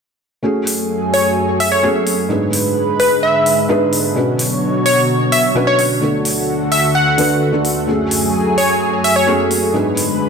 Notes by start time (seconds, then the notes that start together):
0.43 F#2 F#3 A3 C#4 F#4 G#4
0.67 open hi-hat
1.14 C#5, open hi-hat
1.60 E5, open hi-hat
1.72 C#5
1.83 A3 C#4 F#4 G#4
2.07 open hi-hat
2.29 G#2 D3 G#3 B3 D4 G#4 B4
2.53 open hi-hat
3.00 B4, open hi-hat
3.23 E5
3.46 open hi-hat
3.69 G#2 B3 D4 G#4 B4
3.93 open hi-hat
4.15 B2 F#3 C#4 D4 F#4 B4 C#5
4.39 open hi-hat
4.86 C#5, open hi-hat
5.32 E5, open hi-hat
5.55 B2 C#4 D4 F#4 B4
5.67 C#5
5.79 open hi-hat
6.01 D2 D3 A3 D4 F#4 A4
6.25 open hi-hat
6.72 E5, open hi-hat
6.95 F#5
7.18 D3 A3 D4 F#4 B4, open hi-hat
7.53 D3 A3 D4 F#4 A4
7.65 open hi-hat
7.87 F#2 F#3 A3 C#4 F#4 G#4
8.11 open hi-hat
8.58 C#5, open hi-hat
9.04 E5, open hi-hat
9.16 C#5
9.27 A3 C#4 F#4 G#4
9.51 open hi-hat
9.73 G#2 D3 G#3 B3 D4 G#4 B4
9.97 open hi-hat